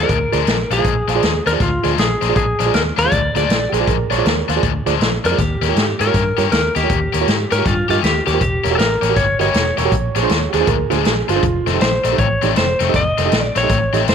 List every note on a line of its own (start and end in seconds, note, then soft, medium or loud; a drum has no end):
0.00 0.17 A#2 medium
0.00 0.17 F3 medium
0.00 0.16 G#3 medium
0.00 0.16 D4 medium
0.00 0.09 F4 medium
0.00 0.09 G#4 medium
0.00 0.74 A#4 medium
0.00 0.09 C5 medium
0.00 0.09 D5 medium
0.09 0.26 D2 medium
0.09 kick loud
0.09 closed hi-hat medium
0.32 0.43 D2 medium
0.32 0.55 A#2 medium
0.32 0.55 F3 medium
0.32 0.54 G#3 medium
0.32 0.54 D4 medium
0.32 0.40 F4 medium
0.32 0.40 G#4 medium
0.32 0.40 C5 medium
0.32 0.40 D5 medium
0.32 snare soft
0.32 closed hi-hat medium
0.47 0.63 A#1 medium
0.47 snare loud
0.47 closed hi-hat medium
0.70 0.80 A#1 medium
0.70 0.93 A#2 medium
0.70 0.92 F3 medium
0.70 0.92 G#3 medium
0.70 0.92 D4 medium
0.70 1.47 G#4 medium
0.70 0.74 C5 medium
0.70 0.75 F5 medium
0.70 snare soft
0.70 closed hi-hat medium
0.78 0.85 F4 medium
0.78 0.85 G#4 medium
0.78 0.85 C5 medium
0.78 0.85 F5 medium
0.84 1.01 A#1 medium
0.84 kick loud
0.84 closed hi-hat medium
1.08 1.18 A#1 medium
1.08 1.30 A#2 medium
1.08 1.30 F3 medium
1.08 1.30 G#3 medium
1.08 1.29 D4 medium
1.08 1.12 C5 medium
1.08 1.13 F5 medium
1.08 snare soft
1.08 closed hi-hat medium
1.15 1.22 F4 medium
1.15 1.23 G#4 medium
1.15 1.23 C5 medium
1.15 1.23 D5 medium
1.22 1.39 D#2 medium
1.22 snare loud
1.22 closed hi-hat medium
1.46 1.56 D#2 medium
1.46 1.68 A#2 medium
1.46 1.68 F3 medium
1.46 1.68 G#3 medium
1.46 1.68 D4 medium
1.46 1.52 A#4 loud
1.46 1.50 C5 medium
1.46 1.50 D5 medium
1.46 snare soft
1.46 closed hi-hat medium
1.52 1.60 F4 medium
1.52 1.60 G#4 medium
1.52 1.60 C5 medium
1.52 1.60 D5 medium
1.60 1.77 D2 medium
1.60 1.96 F4 medium
1.60 kick loud
1.60 snare soft
1.60 closed hi-hat medium
1.83 1.94 D2 medium
1.83 2.06 A#2 medium
1.83 2.05 F3 medium
1.83 2.05 G#3 medium
1.83 2.05 D4 medium
1.83 1.91 F4 medium
1.83 1.91 G#4 medium
1.83 1.91 C5 medium
1.83 1.91 D5 medium
1.83 snare soft
1.83 closed hi-hat soft
1.98 2.14 A#1 medium
1.98 2.35 G#4 medium
1.98 snare loud
1.98 closed hi-hat medium
2.21 2.32 A#1 medium
2.21 2.43 A#2 medium
2.21 2.43 F3 medium
2.21 2.43 G#3 medium
2.21 2.43 D4 medium
2.21 2.25 C5 medium
2.21 2.26 D5 medium
2.21 snare soft
2.21 closed hi-hat medium
2.29 2.36 F4 medium
2.29 2.36 G#4 medium
2.29 2.36 C5 medium
2.29 2.36 D5 medium
2.36 2.52 A#1 medium
2.36 2.75 G#4 medium
2.36 kick loud
2.36 closed hi-hat medium
2.59 2.69 A#1 medium
2.59 2.81 A#2 medium
2.59 2.81 F3 medium
2.59 2.81 G#3 medium
2.59 2.81 D4 medium
2.59 2.63 C5 medium
2.59 2.64 D5 medium
2.59 snare soft
2.59 closed hi-hat medium
2.66 2.73 F4 medium
2.66 2.73 G#4 medium
2.66 2.74 C5 medium
2.66 2.74 D5 medium
2.74 2.90 D#2 medium
2.74 2.81 A#4 loud
2.74 snare loud
2.74 closed hi-hat medium
2.97 3.07 D#2 medium
2.97 3.19 A#2 medium
2.97 3.19 F3 medium
2.97 3.19 G#3 medium
2.97 3.18 D4 medium
2.97 3.01 C5 medium
2.97 3.33 D5 loud
2.97 3.01 F5 medium
2.97 snare soft
2.97 closed hi-hat medium
3.05 3.12 F4 medium
3.05 3.12 G#4 medium
3.05 3.12 C5 medium
3.05 3.12 F5 medium
3.12 3.28 D2 loud
3.12 kick loud
3.12 closed hi-hat medium
3.35 3.45 D2 medium
3.35 3.57 A#2 medium
3.35 3.57 F3 medium
3.35 3.57 G#3 medium
3.35 3.56 D4 medium
3.35 3.43 F4 medium
3.35 3.43 G#4 medium
3.35 3.43 C5 medium
3.35 3.43 D5 medium
3.35 3.71 D5 loud
3.35 snare soft
3.35 closed hi-hat medium
3.49 3.66 A#1 medium
3.49 snare loud
3.49 closed hi-hat medium
3.69 3.82 A#1 medium
3.69 3.94 G#3 medium
3.69 3.94 D4 medium
3.69 3.72 G4 medium
3.69 3.76 C5 medium
3.69 3.77 D5 medium
3.74 3.95 A#2 medium
3.74 3.95 F3 medium
3.74 3.87 G#4 medium
3.74 snare soft
3.74 closed hi-hat medium
3.80 3.87 F4 medium
3.80 3.87 G#4 medium
3.80 3.87 C5 medium
3.80 3.87 D5 medium
3.87 4.04 A#1 medium
3.87 4.11 A#4 medium
3.87 kick loud
3.87 closed hi-hat medium
4.10 4.20 A#1 medium
4.10 4.32 A#2 medium
4.10 4.32 F3 medium
4.10 4.32 G#3 medium
4.10 4.32 D4 medium
4.10 4.14 C5 medium
4.10 4.24 C#5 medium
4.10 4.15 D5 loud
4.10 snare soft
4.10 closed hi-hat medium
4.18 4.25 F4 medium
4.18 4.25 G#4 medium
4.18 4.25 C5 medium
4.18 4.25 D5 medium
4.25 4.41 D#2 medium
4.25 4.61 A#4 medium
4.25 snare loud
4.25 closed hi-hat medium
4.48 4.58 D#2 medium
4.48 4.70 A#2 medium
4.48 4.70 F3 medium
4.48 4.70 G#3 medium
4.48 4.70 D4 medium
4.48 4.52 C5 medium
4.48 4.53 F5 medium
4.48 snare soft
4.48 closed hi-hat medium
4.56 4.63 F4 medium
4.56 4.63 G#4 medium
4.56 4.63 C5 medium
4.56 4.63 D5 medium
4.63 4.79 D2 medium
4.63 kick loud
4.63 closed hi-hat medium
4.86 4.96 D2 medium
4.86 5.08 A#2 medium
4.86 5.08 F3 medium
4.86 5.08 G#3 medium
4.86 5.08 D4 medium
4.86 4.93 F4 medium
4.86 4.94 G#4 medium
4.86 4.94 C5 medium
4.86 4.94 D5 medium
4.86 snare soft
4.86 closed hi-hat medium
5.00 5.17 A#1 medium
5.00 snare loud
5.00 closed hi-hat medium
5.24 5.34 F2 medium
5.24 5.39 A#2 medium
5.24 5.39 F3 medium
5.24 5.39 G#3 medium
5.24 5.38 D4 medium
5.24 5.40 A#4 medium
5.24 5.28 C5 medium
5.24 5.28 D5 medium
5.24 snare soft
5.24 closed hi-hat medium
5.31 5.38 F4 medium
5.31 5.38 G#4 medium
5.31 5.39 C5 medium
5.31 5.38 D5 medium
5.38 5.55 D#2 medium
5.38 6.01 G4 medium
5.38 kick loud
5.38 snare soft
5.38 closed hi-hat medium
5.61 5.71 D#2 medium
5.61 5.84 D#3 medium
5.61 5.83 A#3 medium
5.61 5.83 C#4 medium
5.61 5.83 G4 medium
5.61 5.65 A#4 medium
5.61 5.66 C#5 medium
5.61 snare soft
5.61 closed hi-hat medium
5.68 5.76 F4 medium
5.68 5.76 G4 medium
5.68 5.76 A#4 medium
5.68 5.76 C#5 medium
5.75 5.92 G#2 medium
5.75 snare loud
5.75 closed hi-hat medium
5.99 6.09 G#2 medium
5.99 6.22 D#3 medium
5.99 6.21 A#3 medium
5.99 6.21 C#4 medium
5.99 6.21 G4 medium
5.99 6.03 A#4 medium
5.99 6.49 A#4 medium
5.99 6.04 C5 medium
5.99 snare soft
5.99 closed hi-hat medium
6.06 6.14 F4 medium
6.06 6.14 G4 medium
6.06 6.14 A#4 medium
6.06 6.14 C#5 medium
6.14 6.31 G2 medium
6.14 kick loud
6.14 snare soft
6.14 closed hi-hat medium
6.37 6.48 G2 medium
6.37 6.59 D#3 medium
6.37 6.59 A#3 medium
6.37 6.59 C#4 medium
6.37 6.45 F4 medium
6.37 6.59 G4 medium
6.37 6.45 G4 medium
6.37 6.45 A#4 medium
6.37 6.45 C#5 medium
6.37 snare soft
6.37 closed hi-hat medium
6.52 6.68 D#2 medium
6.52 6.74 A#4 medium
6.52 snare loud
6.52 closed hi-hat medium
6.75 6.85 D#2 medium
6.75 6.97 D#3 medium
6.75 6.97 A#3 medium
6.75 6.97 C#4 medium
6.75 6.97 G4 medium
6.75 7.52 G4 medium
6.75 6.79 A#4 medium
6.75 6.80 D#5 medium
6.75 snare soft
6.75 closed hi-hat medium
6.83 6.90 F4 medium
6.83 6.90 G4 medium
6.83 6.90 A#4 medium
6.83 6.90 C#5 medium
6.90 7.06 D#2 medium
6.90 kick loud
6.90 closed hi-hat medium
7.13 7.23 D#2 medium
7.13 7.35 D#3 medium
7.13 7.35 A#3 medium
7.13 7.34 C#4 medium
7.13 7.34 G4 medium
7.13 7.17 A#4 medium
7.13 7.18 C#5 medium
7.13 snare soft
7.13 closed hi-hat medium
7.21 7.28 F4 medium
7.21 7.28 G4 medium
7.21 7.28 A#4 medium
7.21 7.28 C#5 medium
7.28 7.44 G#2 medium
7.28 snare loud
7.28 closed hi-hat medium
7.51 7.61 G#2 medium
7.51 7.73 D#3 medium
7.51 7.72 A#3 medium
7.51 7.72 C#4 medium
7.51 7.72 G4 medium
7.51 7.55 A#4 medium
7.51 7.65 A#4 medium
7.51 7.55 C#5 medium
7.51 snare soft
7.51 closed hi-hat medium
7.58 7.65 F4 medium
7.58 7.65 G4 medium
7.58 7.65 A#4 medium
7.58 7.65 C#5 medium
7.66 7.82 G2 loud
7.66 7.89 F4 medium
7.66 kick loud
7.66 snare soft
7.66 closed hi-hat medium
7.89 7.99 G2 medium
7.89 8.11 D#3 medium
7.89 8.10 A#3 medium
7.89 8.10 C#4 medium
7.89 7.96 F4 medium
7.89 8.04 F4 loud
7.89 8.10 G4 medium
7.89 7.96 G4 medium
7.89 7.97 A#4 medium
7.89 7.97 D#5 medium
7.89 snare soft
7.89 closed hi-hat medium
8.03 8.19 D#2 medium
8.03 8.26 G4 medium
8.03 snare loud
8.03 closed hi-hat medium
8.26 8.37 D#2 medium
8.26 8.41 D#3 medium
8.26 8.41 A#3 medium
8.26 8.41 C#4 medium
8.26 8.40 G4 medium
8.26 8.41 G4 medium
8.26 8.30 A#4 medium
8.26 8.31 C#5 medium
8.26 snare soft
8.26 closed hi-hat medium
8.34 8.41 F4 medium
8.34 8.41 G4 medium
8.34 8.41 A#4 medium
8.34 8.41 C5 medium
8.41 8.57 E1 loud
8.41 8.72 G4 medium
8.41 kick loud
8.41 closed hi-hat medium
8.64 8.74 E1 loud
8.64 8.86 E3 medium
8.64 8.86 A#3 medium
8.64 8.85 C#4 medium
8.64 8.85 G4 medium
8.64 8.68 A#4 medium
8.64 8.68 C#5 medium
8.64 snare soft
8.64 closed hi-hat medium
8.71 8.78 F#4 medium
8.71 8.78 G4 medium
8.71 8.78 A#4 medium
8.71 8.78 C#5 medium
8.75 8.95 A1 medium
8.75 8.78 A4 medium
8.75 9.17 A#4 loud
8.79 snare loud
8.79 closed hi-hat medium
9.02 9.12 A1 medium
9.02 9.24 E3 medium
9.02 9.24 A#3 medium
9.02 9.23 C#4 medium
9.02 9.23 G4 medium
9.02 9.05 A#4 medium
9.02 9.06 C#5 medium
9.02 snare soft
9.02 closed hi-hat medium
9.09 9.16 F#4 medium
9.09 9.16 G4 medium
9.09 9.16 A#4 medium
9.09 9.16 C#5 medium
9.16 9.33 G1 loud
9.16 9.40 C#5 loud
9.16 kick loud
9.16 snare soft
9.16 closed hi-hat medium
9.39 9.50 G1 medium
9.39 9.61 E3 medium
9.39 9.61 A#3 medium
9.39 9.61 C#4 medium
9.39 9.47 F#4 medium
9.39 9.47 G4 medium
9.39 9.61 G4 medium
9.39 9.47 A#4 medium
9.39 9.76 C#5 loud
9.39 9.47 D#5 medium
9.39 snare soft
9.39 closed hi-hat medium
9.54 9.71 E1 medium
9.54 snare loud
9.54 closed hi-hat medium
9.77 9.87 E1 medium
9.77 9.92 E3 medium
9.77 9.92 A#3 medium
9.77 9.92 C#4 medium
9.77 9.92 G4 medium
9.77 9.81 A#4 medium
9.77 10.14 C#5 medium
9.77 9.82 C#5 medium
9.77 snare soft
9.77 closed hi-hat medium
9.85 9.92 F#4 medium
9.85 9.92 G4 medium
9.85 9.92 A#4 medium
9.85 9.92 C#5 medium
9.92 10.08 A#1 medium
9.92 kick loud
9.92 closed hi-hat medium
10.15 10.25 A#1 loud
10.15 10.37 A#2 medium
10.15 10.37 F3 medium
10.15 10.37 G#3 medium
10.15 10.37 D4 medium
10.15 10.19 G#4 medium
10.15 10.20 C5 loud
10.15 10.52 C#5 medium
10.15 snare soft
10.15 closed hi-hat medium
10.23 10.30 D4 medium
10.23 10.30 F4 medium
10.23 10.30 G#4 medium
10.23 10.30 C5 medium
10.29 10.46 D#2 medium
10.29 snare loud
10.29 closed hi-hat medium
10.50 10.63 D#2 medium
10.50 10.75 G#3 medium
10.50 10.74 D4 medium
10.50 10.52 G4 medium
10.50 closed hi-hat medium
10.54 10.75 A#2 medium
10.54 10.75 F3 medium
10.54 10.57 G#4 medium
10.54 10.67 G#4 medium
10.54 10.57 C5 medium
10.54 snare soft
10.60 10.67 D4 medium
10.60 10.67 F4 medium
10.60 10.67 G#4 medium
10.60 10.68 C5 medium
10.67 10.84 D2 loud
10.67 10.91 A#4 medium
10.67 kick loud
10.67 closed hi-hat medium
10.90 11.01 D2 medium
10.90 11.12 A#2 medium
10.90 11.12 F3 medium
10.90 11.12 G#3 medium
10.90 10.98 D4 medium
10.90 11.12 D4 medium
10.90 10.98 F4 medium
10.90 10.98 G#4 medium
10.90 11.05 G#4 medium
10.90 10.98 C5 medium
10.90 snare soft
10.90 closed hi-hat medium
11.05 11.21 A#1 medium
11.05 11.29 G#4 medium
11.05 snare loud
11.05 closed hi-hat medium
11.28 11.39 G1 medium
11.28 11.43 A#2 medium
11.28 11.43 F3 medium
11.28 11.43 G#3 medium
11.28 11.43 D4 medium
11.28 11.66 F4 medium
11.28 11.32 G#4 medium
11.28 11.32 C5 medium
11.28 snare soft
11.28 closed hi-hat medium
11.36 11.43 D4 medium
11.36 11.43 F4 medium
11.36 11.43 G#4 medium
11.36 11.43 C5 medium
11.43 11.59 F1 medium
11.43 kick loud
11.43 closed hi-hat medium
11.66 11.76 F1 medium
11.66 11.88 F2 medium
11.66 11.88 D#3 medium
11.66 11.88 A3 medium
11.66 11.88 C4 loud
11.66 11.70 A4 medium
11.66 11.70 C5 loud
11.66 snare soft
11.66 closed hi-hat medium
11.74 11.81 D#4 medium
11.74 11.81 G4 medium
11.74 11.81 A4 medium
11.74 11.81 C5 medium
11.81 11.97 A#1 medium
11.81 12.19 C5 medium
11.81 snare loud
11.81 closed hi-hat medium
12.04 12.14 A#1 medium
12.04 12.26 F2 medium
12.04 12.26 D#3 medium
12.04 12.26 A3 medium
12.04 12.25 C4 medium
12.04 12.08 A4 medium
12.04 12.09 D5 medium
12.04 snare soft
12.04 closed hi-hat medium
12.12 12.19 D#4 medium
12.12 12.19 G4 medium
12.12 12.19 A4 medium
12.12 12.19 C5 medium
12.18 12.35 A1 loud
12.18 12.57 C#5 medium
12.18 kick loud
12.18 closed hi-hat medium
12.42 12.52 A1 medium
12.42 12.64 F2 medium
12.42 12.64 D#3 medium
12.42 12.63 A3 medium
12.42 12.63 C4 loud
12.42 12.50 D#4 medium
12.42 12.50 G4 medium
12.42 12.50 A4 medium
12.42 12.50 D5 medium
12.42 snare soft
12.42 closed hi-hat medium
12.56 12.73 F1 medium
12.56 12.96 C5 medium
12.56 snare loud
12.56 closed hi-hat medium
12.80 12.90 F1 medium
12.80 13.02 F2 medium
12.80 13.01 D#3 medium
12.80 13.01 A3 medium
12.80 13.01 C4 medium
12.80 12.84 A4 medium
12.80 12.84 C5 medium
12.80 snare soft
12.80 closed hi-hat medium
12.88 12.95 D#4 medium
12.88 12.95 G4 medium
12.88 12.95 A4 medium
12.88 12.95 D#5 medium
12.94 13.10 F1 medium
12.94 13.41 D#5 loud
12.94 kick loud
12.94 snare soft
12.94 closed hi-hat medium
13.18 13.28 F1 medium
13.18 13.40 F2 medium
13.18 13.39 D#3 medium
13.18 13.39 A3 medium
13.18 13.39 C4 medium
13.18 13.22 A4 medium
13.18 13.22 C5 medium
13.18 snare soft
13.18 closed hi-hat medium
13.25 13.32 D#4 medium
13.25 13.32 G4 medium
13.25 13.32 A4 medium
13.25 13.32 D#5 medium
13.32 13.48 A#1 medium
13.32 snare loud
13.32 closed hi-hat medium
13.41 13.58 D5 loud
13.56 13.65 A#1 medium
13.56 13.77 F2 medium
13.56 13.77 D#3 medium
13.56 13.77 A3 medium
13.56 13.77 C4 medium
13.56 13.59 A4 medium
13.56 13.60 C5 medium
13.56 14.09 C#5 loud
13.56 snare soft
13.56 closed hi-hat medium
13.63 13.70 D#4 medium
13.63 13.70 G4 medium
13.63 13.70 A4 medium
13.63 13.70 D#5 medium
13.70 13.86 A1 loud
13.70 kick loud
13.70 snare soft
13.70 closed hi-hat medium
13.93 14.03 A1 medium
13.93 14.15 F2 medium
13.93 14.15 D#3 medium
13.93 14.15 A3 medium
13.93 14.14 C4 medium
13.93 14.00 D#4 medium
13.93 14.01 G4 medium
13.93 14.01 A4 medium
13.93 14.01 D#5 medium
13.93 snare soft
13.93 closed hi-hat medium
14.08 14.15 F1 medium
14.08 14.15 C5 medium
14.08 snare loud
14.08 closed hi-hat medium